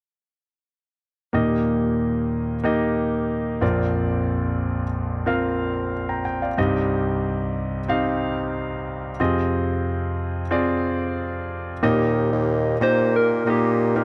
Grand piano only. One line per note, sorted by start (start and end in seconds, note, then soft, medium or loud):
1.33 3.59 D#2 medium
1.33 3.59 A#2 medium
1.33 2.55 A#3 medium
1.33 2.55 D#4 medium
1.33 2.55 G4 medium
1.33 2.55 D#5 medium
2.64 3.62 A#3 medium
2.64 3.63 D#4 medium
2.64 3.63 G4 medium
2.64 3.63 D#5 medium
3.61 6.20 A#1 medium
3.61 6.20 F2 medium
3.61 4.83 C4 medium
3.61 4.83 F4 medium
3.61 4.84 A#4 medium
3.61 4.84 D5 medium
5.26 6.48 C4 medium
5.26 6.48 F4 medium
5.26 6.48 A#4 medium
5.26 5.92 F5 medium
6.09 6.24 G5 soft
6.09 6.24 A#5 soft
6.25 6.41 G5 medium
6.42 6.73 D5 soft
6.42 6.73 F5 soft
6.57 9.16 C2 medium
6.57 9.16 G2 medium
6.57 7.79 C4 medium
6.57 7.79 D#4 medium
6.57 7.80 G4 medium
6.57 7.79 D#5 medium
7.88 9.10 C4 medium
7.88 9.10 D#4 medium
7.88 9.11 G4 medium
7.88 9.11 F5 medium
9.20 11.78 F2 medium
9.20 11.78 C3 medium
9.20 10.41 C4 medium
9.20 10.41 F4 medium
9.20 10.42 G#4 medium
9.20 10.42 D#5 medium
10.51 11.72 C4 medium
10.51 11.72 F4 medium
10.51 11.73 G#4 medium
10.51 11.73 D5 medium
11.83 12.77 A#2 medium
11.83 12.73 A#3 medium
11.83 12.73 D#4 medium
11.83 12.74 G4 medium
11.83 12.74 D#5 medium
12.81 13.41 A#3 medium
12.81 13.41 D#4 medium
12.81 13.42 G4 medium
12.81 13.42 D#5 medium
13.46 13.92 A#3 medium
13.46 13.92 D#4 medium
13.46 13.92 G4 medium
13.46 13.92 D#5 medium
13.95 14.04 A#3 medium
13.95 14.04 D#4 medium
13.95 14.04 G4 medium
13.95 14.04 A#4 medium